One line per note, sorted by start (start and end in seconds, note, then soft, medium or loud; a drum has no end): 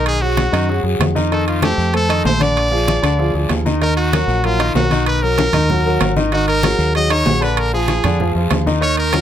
0.00 0.47 B1 medium
0.00 0.16 D#3 medium
0.00 0.16 D#4 medium
0.00 0.16 D#5 medium
0.06 0.23 G#4 loud
0.06 high conga soft
0.06 high timbale medium
0.06 long guiro medium
0.22 0.47 F#3 medium
0.22 0.84 F#4 medium
0.22 0.48 F#4 medium
0.22 0.48 G#4 medium
0.22 high conga soft
0.37 high conga loud
0.37 high timbale medium
0.37 low timbale medium
0.37 short guiro medium
0.52 0.82 F#2 loud
0.52 0.65 D#3 medium
0.52 0.66 D#4 medium
0.52 0.66 D#5 medium
0.52 high conga soft
0.52 high timbale medium
0.52 short guiro medium
0.69 0.82 F#3 medium
0.69 0.82 F#4 medium
0.69 0.82 G#4 medium
0.69 high conga soft
0.69 long guiro medium
0.83 0.98 F#2 medium
0.83 1.10 F#3 medium
0.83 1.10 F#4 medium
0.83 1.10 G#4 medium
0.83 high conga soft
0.99 1.72 F2 medium
0.99 high conga medium
0.99 high timbale medium
0.99 low timbale medium
0.99 short guiro medium
1.15 1.28 D#3 medium
1.15 1.28 D#4 medium
1.15 1.29 D#5 medium
1.15 high conga medium
1.15 short guiro medium
1.32 1.57 D#3 medium
1.32 1.57 D#4 medium
1.32 1.46 A4 medium
1.32 1.58 D#5 medium
1.32 high conga soft
1.32 high timbale medium
1.32 long guiro medium
1.48 1.62 F4 medium
1.48 high conga soft
1.48 high timbale medium
1.62 1.88 A3 medium
1.62 1.92 G4 medium
1.62 1.89 A4 medium
1.62 1.89 C5 medium
1.62 high conga loud
1.62 high timbale loud
1.62 low timbale medium
1.62 short guiro medium
1.78 2.22 F2 medium
1.78 high conga soft
1.78 short guiro medium
1.93 2.06 A3 medium
1.93 2.07 A4 medium
1.93 2.24 A4 medium
1.93 2.07 C5 medium
1.93 high conga soft
1.93 high timbale medium
1.93 long guiro medium
2.09 2.22 D#3 medium
2.09 2.22 D#4 medium
2.09 2.22 D#5 medium
2.09 high conga soft
2.09 high timbale loud
2.24 2.98 A#1 medium
2.24 2.38 A3 medium
2.24 2.38 A4 medium
2.24 2.38 C5 medium
2.24 2.44 C5 loud
2.24 high conga medium
2.24 low timbale medium
2.24 short guiro medium
2.39 2.66 D3 medium
2.39 2.66 D4 medium
2.39 2.66 D5 medium
2.39 3.51 D5 medium
2.39 high conga medium
2.39 high timbale medium
2.39 short guiro medium
2.56 high conga soft
2.56 high timbale medium
2.56 long guiro medium
2.71 2.97 F3 medium
2.71 2.97 F4 medium
2.71 2.98 G#4 medium
2.71 high conga soft
2.88 high conga loud
2.88 high timbale medium
2.88 low timbale medium
2.88 short guiro medium
3.02 3.32 D2 loud
3.02 3.16 D3 medium
3.02 3.16 D4 medium
3.02 3.16 D5 medium
3.02 high timbale medium
3.02 short guiro medium
3.19 3.32 F3 medium
3.19 3.32 F4 medium
3.19 3.32 G#4 medium
3.19 high conga soft
3.19 long guiro medium
3.34 3.49 D2 medium
3.34 3.60 F3 medium
3.34 3.60 F4 medium
3.34 3.60 G#4 medium
3.34 high conga soft
3.49 4.23 D#2 medium
3.49 high conga medium
3.49 high timbale medium
3.49 low timbale medium
3.49 short guiro medium
3.66 3.79 D#3 medium
3.66 3.79 D#4 medium
3.66 3.79 D#5 medium
3.66 high conga medium
3.66 short guiro medium
3.81 4.07 D#3 medium
3.81 4.08 D#4 medium
3.81 3.96 A#4 medium
3.81 4.07 D#5 medium
3.81 high conga soft
3.81 high timbale medium
3.81 long guiro medium
3.97 4.46 F#4 medium
3.97 high conga soft
3.97 high timbale medium
4.12 4.38 F#3 medium
4.12 4.38 F#4 medium
4.12 4.39 A#4 medium
4.12 high conga medium
4.12 high timbale medium
4.12 low timbale medium
4.12 short guiro medium
4.28 4.72 A#1 loud
4.28 high conga soft
4.28 short guiro medium
4.44 4.57 F#3 medium
4.44 4.74 F4 medium
4.44 4.57 F#4 medium
4.44 4.57 A#4 medium
4.44 high conga soft
4.44 high timbale medium
4.44 long guiro medium
4.59 4.72 D#3 medium
4.59 4.73 D#4 medium
4.59 4.73 D#5 medium
4.59 high conga soft
4.59 high timbale medium
4.75 5.48 B1 medium
4.75 4.88 F#3 medium
4.75 5.04 F#4 medium
4.75 4.88 F#4 medium
4.75 4.89 A#4 medium
4.75 high conga medium
4.75 low timbale medium
4.75 short guiro medium
4.91 5.17 D#3 medium
4.91 5.17 D#4 medium
4.91 5.18 D#5 medium
4.91 high conga medium
4.91 high timbale medium
4.91 short guiro medium
5.06 5.24 B4 medium
5.06 high conga soft
5.06 high timbale medium
5.06 long guiro medium
5.22 5.48 F#3 medium
5.22 5.48 F#4 medium
5.22 6.16 A#4 loud
5.22 5.49 A#4 medium
5.22 high conga soft
5.38 high conga loud
5.38 high timbale medium
5.38 low timbale medium
5.38 short guiro medium
5.53 5.97 D#2 loud
5.53 5.67 D#3 medium
5.53 5.67 D#4 medium
5.53 5.67 D#5 medium
5.53 high conga soft
5.53 low conga medium
5.53 high timbale medium
5.53 short guiro medium
5.69 5.82 F#3 medium
5.69 5.83 F#4 medium
5.69 5.83 A#4 medium
5.69 high conga soft
5.69 low conga medium
5.69 long guiro medium
5.85 6.12 F#3 medium
5.85 6.12 F#4 medium
5.85 6.12 A#4 medium
5.85 high conga soft
6.00 6.73 G#1 medium
6.00 high conga medium
6.00 high timbale loud
6.00 low timbale medium
6.00 short guiro medium
6.16 6.29 D#3 medium
6.16 6.30 D#4 medium
6.16 6.30 D#5 medium
6.16 high conga medium
6.16 short guiro medium
6.32 6.58 D#3 medium
6.32 6.58 D#4 medium
6.32 6.47 F#4 medium
6.32 6.59 D#5 medium
6.32 high conga soft
6.32 high timbale medium
6.32 long guiro medium
6.48 6.92 A#4 loud
6.48 high conga soft
6.48 high timbale medium
6.63 6.90 F#3 medium
6.63 6.90 F#4 medium
6.63 6.90 G#4 medium
6.63 high conga loud
6.63 high timbale medium
6.63 low timbale medium
6.63 short guiro medium
6.79 7.22 D#2 loud
6.79 high conga soft
6.79 short guiro medium
6.95 7.08 F#3 medium
6.95 7.08 F#4 medium
6.95 7.08 G#4 medium
6.95 7.13 D#5 loud
6.95 high conga soft
6.95 high timbale medium
6.95 long guiro medium
7.10 7.23 D#3 medium
7.10 7.23 D#4 medium
7.10 7.44 C#5 loud
7.10 7.24 D#5 medium
7.10 high conga soft
7.10 high timbale loud
7.26 7.99 A#1 medium
7.26 7.39 F#3 medium
7.26 7.39 F#4 medium
7.26 7.39 G#4 medium
7.26 high conga medium
7.26 low timbale medium
7.26 short guiro medium
7.41 7.67 D3 medium
7.41 7.67 D4 medium
7.41 7.60 B4 medium
7.41 7.67 D5 medium
7.41 high timbale medium
7.41 short guiro medium
7.57 7.74 A#4 loud
7.57 high conga soft
7.57 high timbale loud
7.57 long guiro medium
7.73 7.99 F3 medium
7.73 7.99 F4 medium
7.73 7.99 G#4 medium
7.73 8.32 G#4 medium
7.73 high conga soft
7.88 high conga medium
7.88 high timbale medium
7.88 low timbale medium
7.88 short guiro medium
8.04 8.33 F2 medium
8.04 8.17 D3 medium
8.04 8.17 D4 medium
8.04 8.17 D5 medium
8.04 high conga soft
8.04 low conga medium
8.04 high timbale medium
8.04 short guiro medium
8.20 8.33 F3 medium
8.20 8.33 F4 medium
8.20 8.33 G#4 medium
8.20 high conga soft
8.20 low conga medium
8.20 long guiro medium
8.35 8.50 F2 medium
8.35 8.61 F3 medium
8.35 8.62 F4 medium
8.35 8.62 G#4 medium
8.35 high conga soft
8.51 9.21 D#2 medium
8.51 high conga medium
8.51 high timbale medium
8.51 low timbale medium
8.51 short guiro medium
8.66 8.79 D#3 medium
8.66 8.80 D#4 medium
8.66 8.80 D#5 medium
8.66 high conga medium
8.66 short guiro medium
8.81 9.07 D#3 medium
8.81 9.07 D#4 medium
8.81 8.97 C#5 loud
8.81 9.08 D#5 medium
8.81 high conga soft
8.81 high timbale medium
8.81 long guiro medium
8.97 9.21 A#4 loud
8.97 high conga soft
8.97 high timbale medium
9.13 9.21 F#3 medium
9.13 9.21 F#4 medium
9.13 9.21 A#4 medium
9.13 high conga medium
9.13 high timbale loud
9.13 low timbale medium
9.13 short guiro medium